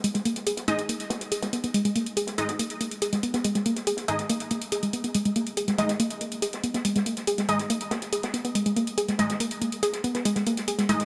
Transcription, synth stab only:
0.68 G#3 D#4 D#5
2.38 G#3 D#4 D#5
4.08 G#3 D#4 D#5
5.78 G#3 D#4 D#5
7.49 G#3 D#4 D#5
9.19 G#3 D#4 D#5
10.89 G#3 D#4 D#5

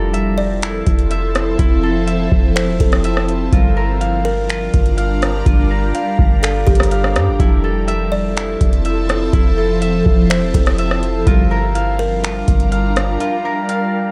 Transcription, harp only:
Already playing: E4 A4
0.13 E5
0.63 E4
1.11 E5
1.59 E4
1.83 A4
2.07 E5
2.56 E4
3.05 E5
3.52 F4
3.77 A#4
4.01 F5
4.49 F4
4.97 F5
5.46 F4
5.71 A#4
5.95 F5
6.44 F4
6.91 F5
7.40 E4
7.64 A4
7.88 E5
8.37 E4
8.85 E5
9.33 E4
9.58 A4
9.82 E5
10.30 E4
10.79 E5
11.27 F4
11.51 A#4
11.75 F5
12.23 F4
12.72 F5
13.20 F4
13.45 A#4
13.69 F5

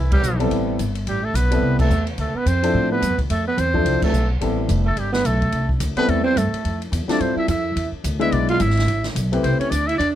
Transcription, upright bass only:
Already playing: C2
0.22 B1
0.51 A1
0.79 G1
1.07 A1
1.34 B1
1.62 C2
1.89 E2
2.18 D2
2.34 muted upright bass stroke
2.46 F2
2.74 A2
3.02 G2
3.09 F2
3.20 D2
3.30 F2
3.57 E2
3.85 C2
4.02 muted upright bass stroke
4.12 B1
4.41 A1
4.69 F1
4.96 G1
5.25 B1
5.53 C2
5.80 D2
5.96 muted upright bass stroke
6.08 E2
6.36 G2
6.52 muted upright bass stroke
6.65 F2
6.92 E2
7.08 muted upright bass stroke
7.20 G2
7.36 muted upright bass stroke
7.48 F2
7.76 E2
7.92 muted upright bass stroke
8.04 D2
8.32 B1
8.60 G#1
8.87 A1
9.15 B1
9.43 C2
9.59 muted upright bass stroke
9.71 D2
9.99 E2

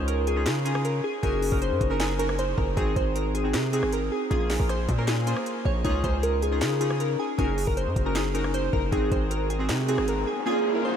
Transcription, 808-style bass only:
Already playing: C#2
0.46 C#3
1.23 F#1
1.52 F#1
1.71 F#2
1.81 F#1
2.58 F#1
2.77 G#1
2.96 G#1
3.54 C3
3.83 G#1
4.31 A#1
4.60 A#1
4.89 A#2
5.65 A#1
5.85 C#2
6.04 C#2
6.62 C#3
7.39 F#1
7.68 F#1
7.87 F#2
7.96 F#1
8.73 F#1
8.92 G#1
9.12 G#1
9.69 C3
9.98 G#1

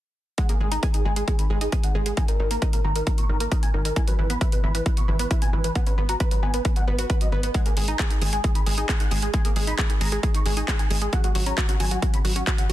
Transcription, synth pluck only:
0.38 G#3
0.49 A#3
0.61 G#3
0.72 D#4
0.83 G#4
0.94 D#3
1.05 G#3
1.16 G#3
1.28 G#3
1.39 D#3
1.50 G#3
1.61 D#4
1.72 G#4
1.84 D#3
1.95 G#3
2.06 G#3
2.17 D#3
2.28 D#3
2.40 D#3
2.51 A#3
2.62 D#4
2.73 A#2
2.84 D#3
2.96 D#3
3.07 D#3
3.18 A#2
3.29 D#3
3.40 A#3
3.52 D#4
3.63 A#2
3.74 D#3
3.85 D#3
3.96 E3
4.07 F#3
4.19 E3
4.30 B3
4.41 E4
4.52 B2
4.63 E3
4.75 E3
4.86 E3
4.97 B2
5.08 E3
5.19 B3
5.31 E4
5.42 B2
5.53 E3
5.64 E3
5.75 B3
5.87 C#4
5.98 B3
6.09 F#4
6.20 B4
6.31 F#3
6.43 B3
6.54 B3
6.65 B3
6.76 F#3
6.87 B3
6.99 F#4
7.10 B4
7.21 F#3
7.32 B3
7.43 B3
7.55 G#3
7.66 A#3
7.77 G#3
7.88 D#4
7.99 G#4
8.11 D#3
8.22 G#3
8.33 G#3
8.44 G#3
8.55 D#3
8.66 G#3
8.78 D#4
8.89 G#4
9.00 D#3
9.11 G#3
9.22 G#3
9.34 G#3
9.45 A#3
9.56 G#3
9.67 D#4
9.78 G#4
9.90 D#3
10.01 G#3
10.12 G#3
10.23 G#3
10.34 D#3
10.46 G#3
10.57 D#4
10.68 G#4
10.79 D#3
10.90 G#3
11.02 G#3
11.13 F#3
11.24 G#3
11.35 F#3
11.46 C#4
11.58 F#4
11.69 C#3
11.80 F#3
11.91 F#3
12.02 F#3
12.13 C#3
12.25 F#3
12.36 C#4
12.47 F#4
12.58 C#3
12.69 F#3

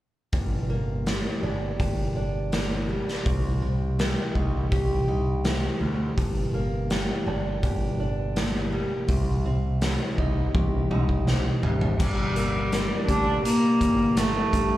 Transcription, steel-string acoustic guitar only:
0.33 G2
0.70 A#3
1.06 G3
1.43 D4
1.79 G4
2.16 D4
2.52 A#3
2.89 G3
3.25 C3
3.62 C4
3.99 G3
4.35 D#4
4.72 G4
5.08 D#4
5.44 C4
5.81 G3
6.17 G2
6.54 A#3
6.90 G3
7.27 D4
7.63 G4
8.00 D4
8.36 A#3
8.72 G3
9.09 C3
9.45 C4
9.82 G3
10.18 D#4
10.54 G4
10.91 D#4
11.27 C4
11.63 G3
11.99 G2
12.36 A#3
12.72 D4
13.08 G4
13.80 G3
14.53 G4

